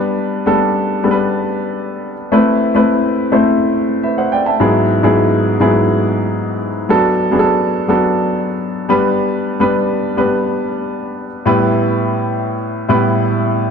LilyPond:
\new Staff \with { instrumentName = "Grand piano" } { \time 4/4 \key e \minor \tempo 4 = 105 << { r1 | r2. <b' e''>16 <c'' fis''>16 <d'' g''>16 <e'' a''>16~ | <e'' a''>16 r2. r8. | r1 |
r1 | r1 | } \\ { <g b d' b'>8. <g b d' a'>4 <g b d' a' b'>2 r16 | <a c' e' b'>8. <a c' e' b'>4 <a c' e' c''>2 r16 | <gis, fis b e' gis'>8. <gis, fis b e' gis'>4 <gis, fis b e' gis'>2 r16 | <fis b d' a'>8. <fis b d' gis' a'>4 <fis b d' a'>4.~ <fis b d' a'>16 <g b d' b'>8~ |
<g b d' b'>8. <g b d' b'>4 <g b d' b'>2 r16 | <a, g b e' b'>2 r8 <a, g b e' b'>4. | } >> }